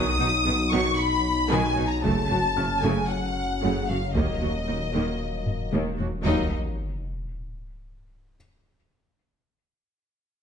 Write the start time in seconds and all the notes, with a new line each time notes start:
Already playing: B1 D#3 F#3 D#4 B4 B5 D#6
0.19 B1 B2 F#3 D#4
0.46 B1 B2 D#3 B3
0.71 B1 B2 D#3 F#3 C#6
0.98 B5
1.51 B1 B2 D#3 F#3 G#5
1.77 B1 B2 F#3 D#4
1.89 A#5
2.03 F#1 F#2 C#3 F#3 A3 C#4 A5, taiko
2.30 F#1 F#2 F#3 F#4
2.57 F#1 F#2 C#3 C#4 F6
2.82 F#1 F#2 C#3 A3 G#5
3.08 F#5
3.62 F#1 F#2 C#3 A3
3.88 F#1 F#2 F#3 F#4 F5
4.14 D#1 D#2 D#3 A#3 D#5, taiko
4.41 D#2 F#3 F#4
4.68 D#2 D#3 D#4
4.93 D#2 D#3 A#3
5.47 taiko low-mid
5.72 D#2 D#3 A#3, taiko high
5.97 D#2 F#3 F#4, taiko low
6.24 D#1 D#2 F#3 A#3 D#4 D#5, sub drop